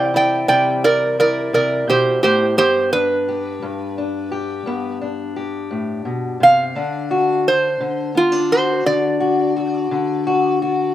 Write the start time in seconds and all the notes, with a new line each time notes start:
Already playing: C3 E3 G3 C4 E4 D5 G5
0.14 E4 D5 G5
0.48 C3 G3 D5 G5
0.84 A#4 D5
1.19 E4 A#4 D5
1.53 C3 A#4 D5
1.88 B2 G4 C5
2.23 A2 G4 C5
2.58 G2 B3 G4 C5
2.93 D4 B4
3.28 G4
3.62 G2
3.98 D4
4.32 G4
4.66 G2 B3
5.01 D4
5.36 G4
5.71 A2
6.05 B2
6.40 C3 F5
6.75 D3 D4
7.11 F#4
7.48 C5
7.80 D3
8.15 B3 F4
8.32 D4
8.51 F#4 C5
8.86 D3 D4 D5
9.20 F#4
9.56 F#4
9.91 D3
10.27 F#4
10.62 F#4